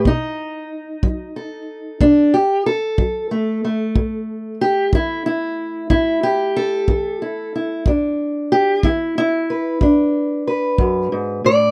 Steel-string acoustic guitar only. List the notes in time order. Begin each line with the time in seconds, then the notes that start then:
0.05 B2 D#4
1.03 F#3
1.36 A4
2.01 B2 D4
2.34 G4
2.66 A4
2.98 F#3
3.31 A3
3.65 A3
3.95 A2
4.61 G4
4.93 E3 E4
5.26 E4
5.90 A2 E4
6.23 G4
6.56 A4
6.88 E3
7.22 E4
7.55 E4
7.87 E2 D4
8.52 G4
8.84 E3 E4
9.18 E4
9.50 B4
9.82 E2 D4
10.47 B4
10.79 F#2
11.12 G#2
11.44 A2 D5